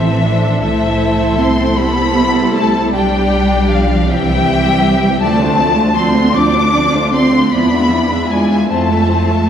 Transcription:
0.00 0.63 A1 medium
0.00 0.61 E3 medium
0.00 0.62 E3 medium
0.00 0.25 C4 medium
0.00 2.90 A4 medium
0.00 0.63 C5 medium
0.00 0.61 E5 loud
0.24 0.63 D4 medium
0.62 2.89 C2 medium
0.62 1.38 E3 medium
0.62 1.75 A3 medium
0.62 1.77 E4 medium
0.62 1.76 C5 medium
0.62 1.37 E5 loud
1.39 1.77 C4 medium
1.39 1.77 C6 loud
1.77 2.93 G3 medium
1.77 2.55 B3 loud
1.77 2.91 E4 medium
1.77 2.91 C5 medium
1.77 2.55 B5 loud
2.54 2.93 A3 medium
2.54 2.92 A5 loud
2.92 4.05 B1 medium
2.92 3.69 G3 medium
2.92 4.06 G3 medium
2.92 4.06 D4 medium
2.92 4.06 G4 medium
2.92 4.06 D5 medium
2.92 3.68 G5 loud
3.69 4.07 F3 medium
3.69 4.08 F5 medium
4.08 5.21 C2 medium
4.08 5.21 E3 medium
4.08 5.19 G3 medium
4.08 5.19 C4 medium
4.08 5.19 G4 medium
4.08 5.22 E5 medium
4.08 5.21 G5 loud
5.20 6.21 D2 medium
5.20 5.38 F3 medium
5.20 5.94 A3 medium
5.20 5.38 C4 medium
5.20 5.39 D4 medium
5.20 5.39 D5 medium
5.20 5.94 A5 loud
5.39 5.58 A3 medium
5.39 5.58 D4 medium
5.39 5.59 F4 medium
5.39 5.59 C5 medium
5.57 5.76 F3 medium
5.57 5.76 C4 medium
5.57 5.77 D4 medium
5.57 5.77 D5 medium
5.76 5.96 A3 medium
5.76 5.96 D4 medium
5.76 5.95 F4 medium
5.76 5.95 C5 medium
5.94 6.13 F3 medium
5.94 6.13 C4 medium
5.94 6.34 C4 medium
5.94 6.13 D4 medium
5.94 6.12 D5 medium
5.94 6.34 C6 loud
6.14 6.34 A3 medium
6.14 6.34 D4 medium
6.14 6.34 F4 medium
6.14 6.34 C5 medium
6.34 7.38 D2 medium
6.34 6.53 F3 medium
6.34 6.54 C4 medium
6.34 6.53 D4 medium
6.34 7.13 D4 medium
6.34 6.54 D5 medium
6.34 7.13 D6 loud
6.53 6.73 A3 medium
6.53 6.73 D4 medium
6.53 6.73 F4 medium
6.53 6.73 C5 medium
6.73 6.92 F3 medium
6.73 6.92 C4 medium
6.73 6.91 D4 medium
6.73 6.92 D5 medium
6.93 7.13 A3 medium
6.93 7.13 D4 medium
6.93 7.13 F4 medium
6.93 7.13 C5 medium
7.12 7.32 F3 medium
7.12 7.51 C4 medium
7.12 7.32 C4 medium
7.12 7.32 D4 medium
7.12 7.31 D5 medium
7.12 7.51 C6 loud
7.32 7.52 A3 medium
7.32 7.52 D4 medium
7.32 7.52 F4 medium
7.32 7.52 C5 medium
7.51 8.55 E2 medium
7.51 7.69 F3 medium
7.51 8.28 B3 medium
7.51 7.71 D4 medium
7.51 7.69 E4 medium
7.51 7.70 D5 medium
7.51 8.29 B5 loud
7.70 7.90 G#3 medium
7.70 7.90 D4 medium
7.70 7.92 F4 medium
7.70 7.92 E5 medium
7.89 8.09 F3 medium
7.89 8.11 D4 medium
7.89 8.09 E4 medium
7.89 8.11 D5 medium
8.10 8.29 G#3 medium
8.10 8.29 D4 medium
8.10 8.31 F4 medium
8.10 8.31 E5 medium
8.29 8.47 F3 medium
8.29 8.68 G#3 medium
8.29 8.47 E4 medium
8.29 8.68 G#5 medium
8.33 8.50 D4 medium
8.33 8.49 D5 medium
8.49 8.68 G#3 medium
8.49 8.69 D4 soft
8.49 8.70 F4 medium
8.49 8.69 E5 medium
8.67 9.49 F2 medium
8.67 9.49 A3 medium
8.67 8.87 C4 medium
8.67 8.87 E4 medium
8.67 8.88 F4 soft
8.67 8.88 C5 soft
8.67 9.49 A5 medium
8.89 9.08 A3 medium
8.89 9.08 F4 soft
8.89 9.09 A4 medium
8.89 9.08 E5 medium
9.08 9.28 C4 medium
9.08 9.28 E4 medium
9.08 9.28 F4 soft
9.08 9.28 C5 medium
9.29 9.49 A3 soft
9.29 9.48 F4 medium
9.29 9.49 A4 soft
9.29 9.49 E5 soft

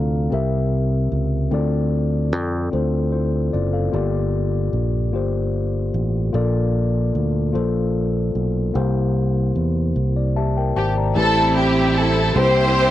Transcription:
0.00 0.29 D2 medium
0.00 0.28 C3 medium
0.00 0.16 C4 medium
0.00 0.16 F4 medium
0.00 0.20 A4 medium
0.00 0.17 F5 medium
0.30 1.08 C2 medium
0.30 1.48 C3 medium
0.30 1.36 C4 medium
0.30 1.37 G4 soft
0.30 1.38 A#4 medium
0.30 1.38 E5 medium
1.12 1.49 C#2 medium
1.51 2.33 D2 medium
1.51 2.69 D3 medium
1.51 2.57 C4 medium
1.51 1.58 E4 medium
1.51 2.58 A4 medium
1.51 2.59 D5 medium
1.58 2.61 F4 medium
2.33 2.70 F2 medium
2.71 3.49 D2 medium
2.71 3.77 C4 medium
2.71 3.13 F4 medium
2.71 3.13 A4 medium
2.71 3.11 C5 medium
3.12 3.51 E4 soft
3.12 3.51 C5 medium
3.53 3.91 F#1 medium
3.53 3.73 F4 soft
3.53 3.72 D5 medium
3.73 4.12 A4 soft
3.73 4.11 F5 soft
3.92 4.70 G1 medium
3.92 5.10 G2 medium
3.92 4.98 A#3 medium
3.92 4.99 F4 medium
3.92 4.99 G4 medium
3.92 4.99 D5 medium
4.73 5.13 A#1 medium
5.13 5.90 G1 medium
5.13 6.19 A#3 medium
5.13 6.19 F4 medium
5.13 6.20 G4 medium
5.13 6.20 C5 medium
5.94 6.31 A1 medium
6.33 7.11 A#1 medium
6.33 7.51 A#2 medium
6.33 7.39 A#3 medium
6.33 7.39 F4 medium
6.33 7.40 A4 medium
6.33 7.40 D5 medium
7.15 7.52 D2 medium
7.52 8.31 A#1 medium
7.52 8.59 A#3 medium
7.52 8.59 F4 medium
7.52 8.60 A4 medium
7.52 8.60 C5 medium
8.35 8.72 B1 medium
8.74 9.51 C2 medium
8.74 9.91 C3 medium
8.74 9.80 A#3 medium
8.74 9.80 E4 medium
8.74 9.81 G4 medium
8.74 9.81 C5 medium
9.56 9.92 E2 medium
9.96 10.72 C2 medium
10.16 10.35 D5 soft
10.36 10.56 G4 soft
10.36 10.55 E5 medium
10.36 10.73 A5 medium
10.57 10.76 A#4 soft
10.57 10.75 G5 medium
10.76 11.13 G#1 medium
10.76 10.95 G4 medium
10.76 10.95 C5 soft
10.76 11.13 G5 medium
10.76 10.95 A5 medium
10.98 11.35 D5 soft
10.98 11.35 A#5 soft
11.14 12.32 A1 medium
11.14 12.32 A2 medium
11.14 12.33 G3 medium
11.14 12.20 A3 medium
11.14 12.33 C4 medium
11.14 12.32 C4 medium
11.14 12.34 E4 medium
11.14 12.21 E4 medium
11.14 12.32 E4 medium
11.14 12.21 G4 medium
11.14 12.35 A4 medium
11.14 11.53 A4 medium
11.19 11.24 B4 medium
11.25 12.25 C5 medium
11.58 11.97 G4 medium
11.96 12.36 A4 medium
12.34 12.91 C2 loud
12.34 12.91 C3 medium
12.34 12.91 G3 medium
12.34 12.91 A#3 medium
12.34 12.91 C4 medium
12.34 12.91 E4 medium
12.34 12.91 G4 medium
12.34 12.91 A#4 medium
12.34 12.91 C5 loud
12.38 12.43 B4 medium
12.45 12.91 C5 medium

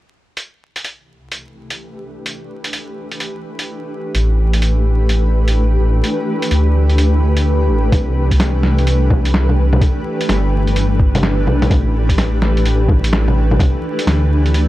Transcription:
0.37 2.26 C2 medium
0.37 closed hi-hat soft
0.62 14.68 E3 medium
0.76 14.68 A3 medium
0.76 closed hi-hat medium
0.84 closed hi-hat medium
1.05 14.68 G4 medium
1.24 14.68 D4 medium
1.24 14.68 B4 medium
1.32 closed hi-hat medium
1.70 closed hi-hat medium
2.26 closed hi-hat medium
2.64 closed hi-hat medium
2.73 closed hi-hat medium
3.11 closed hi-hat soft
3.20 closed hi-hat medium
3.59 closed hi-hat medium
4.15 5.79 A1 loud
4.15 closed hi-hat medium
4.53 closed hi-hat medium
4.62 closed hi-hat medium
5.09 closed hi-hat medium
5.48 closed hi-hat medium
5.80 6.02 A1 medium
6.04 closed hi-hat soft
6.42 closed hi-hat medium
6.51 7.21 D2 loud
6.51 closed hi-hat medium
6.89 closed hi-hat soft
6.98 closed hi-hat soft
7.22 7.70 D2 medium
7.37 closed hi-hat medium
7.69 7.91 A1 medium
7.92 9.57 C2 loud
7.92 kick loud
7.92 closed hi-hat medium
7.92 low bongo medium
8.31 kick medium
8.31 closed hi-hat medium
8.40 snare loud
8.40 closed hi-hat medium
8.63 snare medium
8.78 closed hi-hat soft
8.87 closed hi-hat medium
9.10 kick loud
9.10 low bongo medium
9.25 closed hi-hat medium
9.34 snare loud
9.49 low bongo soft
9.58 9.80 C2 medium
9.73 low bongo medium
9.81 kick loud
9.81 closed hi-hat medium
9.81 low bongo medium
10.21 closed hi-hat medium
10.29 11.48 G1 medium
10.29 snare loud
10.29 closed hi-hat medium
10.67 closed hi-hat soft
10.76 closed hi-hat medium
11.00 kick loud
11.15 closed hi-hat medium
11.15 low bongo medium
11.23 snare loud
11.47 11.69 B1 medium
11.47 low bongo soft
11.62 closed hi-hat soft
11.62 low bongo medium
11.70 13.35 A1 medium
11.70 kick loud
11.70 closed hi-hat medium
11.70 low bongo medium
12.09 kick medium
12.09 closed hi-hat medium
12.18 snare loud
12.18 closed hi-hat medium
12.42 snare medium
12.57 closed hi-hat soft
12.66 closed hi-hat medium
12.89 kick loud
12.89 low bongo medium
13.04 closed hi-hat medium
13.13 snare loud
13.28 low bongo soft
13.36 13.58 A1 medium
13.51 low bongo medium
13.59 kick loud
13.59 closed hi-hat medium
13.59 low bongo medium
13.99 closed hi-hat medium
14.07 14.68 D2 medium
14.07 snare loud
14.07 closed hi-hat medium
14.46 closed hi-hat soft
14.54 closed hi-hat medium

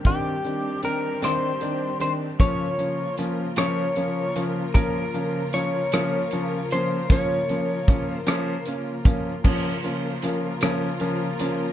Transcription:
0.03 2.37 D#3 medium
0.03 0.31 D#3 medium
0.03 2.37 G3 medium
0.03 2.37 C4 medium
0.03 0.32 C4 medium
0.03 2.37 D4 medium
0.03 0.32 D4 medium
0.03 2.37 G4 medium
0.03 0.84 G4 medium
0.03 kick medium
0.03 closed hi-hat medium
0.44 0.70 D#3 soft
0.44 0.70 C4 soft
0.44 0.70 D4 medium
0.44 closed hi-hat soft
0.83 1.09 D#3 soft
0.83 1.09 C4 soft
0.83 1.09 D4 medium
0.83 1.24 A#4 medium
0.83 closed hi-hat medium
1.22 1.48 D#3 medium
1.22 1.48 C4 medium
1.22 1.49 D4 medium
1.22 2.00 C5 medium
1.22 cross-stick medium
1.22 closed hi-hat medium
1.61 1.87 D#3 medium
1.61 1.88 C4 soft
1.61 1.88 D4 medium
1.61 closed hi-hat soft
2.00 2.26 D#3 medium
2.00 2.27 C4 soft
2.00 2.26 D4 medium
2.00 2.12 C5 medium
2.00 closed hi-hat medium
2.39 9.41 C#3 medium
2.39 2.66 F3 medium
2.39 9.41 F3 medium
2.39 2.66 A#3 medium
2.39 9.41 A#3 medium
2.39 2.66 C#4 medium
2.39 9.41 F4 medium
2.39 9.41 A#4 medium
2.39 3.15 C#5 medium
2.39 kick medium
2.39 closed hi-hat medium
2.78 3.05 F3 soft
2.78 3.05 A#3 soft
2.78 3.05 C#4 medium
2.78 closed hi-hat soft
3.17 3.44 F3 medium
3.17 3.44 A#3 soft
3.17 3.45 C#4 medium
3.17 cross-stick soft
3.17 closed hi-hat medium
3.56 3.83 F3 medium
3.56 3.84 A#3 medium
3.56 3.84 C#4 medium
3.56 4.42 C#5 medium
3.56 cross-stick medium
3.56 closed hi-hat medium
3.96 4.23 F3 medium
3.96 4.23 A#3 medium
3.96 4.23 C#4 medium
3.96 closed hi-hat soft
4.36 4.62 F3 medium
4.36 4.62 A#3 medium
4.36 4.62 C#4 medium
4.36 closed hi-hat medium
4.74 5.01 F3 medium
4.74 5.01 A#3 medium
4.74 5.01 C#4 medium
4.74 5.49 A#4 medium
4.74 kick medium
4.74 closed hi-hat medium
5.14 5.40 F3 medium
5.14 5.41 A#3 soft
5.14 5.41 C#4 medium
5.14 closed hi-hat soft
5.53 5.80 F3 medium
5.53 5.80 A#3 medium
5.53 5.80 C#4 medium
5.53 6.67 C#5 medium
5.53 cross-stick soft
5.53 closed hi-hat medium
5.92 6.19 F3 medium
5.92 6.19 A#3 medium
5.92 6.19 C#4 medium
5.92 cross-stick medium
5.92 closed hi-hat medium
6.31 6.58 F3 medium
6.31 6.58 A#3 medium
6.31 6.59 C#4 medium
6.31 closed hi-hat soft
6.71 6.98 F3 medium
6.71 6.98 A#3 medium
6.71 6.98 C#4 medium
6.71 7.08 C5 medium
6.71 closed hi-hat medium
7.10 7.36 F3 medium
7.10 7.36 A#3 medium
7.10 7.36 C#4 medium
7.10 8.10 C#5 medium
7.10 kick medium
7.10 closed hi-hat medium
7.49 7.75 F3 medium
7.49 7.75 A#3 medium
7.49 7.76 C#4 medium
7.49 closed hi-hat soft
7.88 8.14 F3 medium
7.88 8.14 A#3 soft
7.88 8.15 C#4 medium
7.88 kick medium
7.88 closed hi-hat medium
8.10 8.64 C5 medium
8.26 8.53 F3 medium
8.26 8.53 A#3 medium
8.26 8.53 C#4 loud
8.26 cross-stick medium
8.26 closed hi-hat medium
8.65 8.93 A#3 medium
8.65 8.93 C#4 medium
8.65 closed hi-hat medium
9.05 9.31 F3 medium
9.05 9.32 A#3 medium
9.05 9.32 C#4 medium
9.05 kick medium
9.05 closed hi-hat medium
9.44 11.73 C#3 medium
9.44 9.70 F3 medium
9.44 11.73 F3 medium
9.44 9.71 A#3 medium
9.44 11.73 A#3 medium
9.44 9.71 C#4 medium
9.44 11.73 F4 medium
9.44 11.73 A#4 medium
9.44 kick medium
9.44 crash medium
9.84 10.10 F3 soft
9.84 10.10 A#3 medium
9.84 10.10 C#4 medium
9.84 closed hi-hat soft
10.22 10.49 F3 medium
10.22 10.49 A#3 medium
10.22 10.49 C#4 medium
10.22 cross-stick soft
10.22 closed hi-hat medium
10.61 10.88 F3 medium
10.61 10.88 A#3 medium
10.61 10.88 C#4 medium
10.61 cross-stick loud
10.61 closed hi-hat medium
11.00 11.27 F3 medium
11.00 11.27 A#3 medium
11.00 11.27 C#4 medium
11.00 closed hi-hat soft
11.39 11.66 F3 medium
11.39 11.66 A#3 medium
11.39 11.66 C#4 medium
11.39 closed hi-hat medium

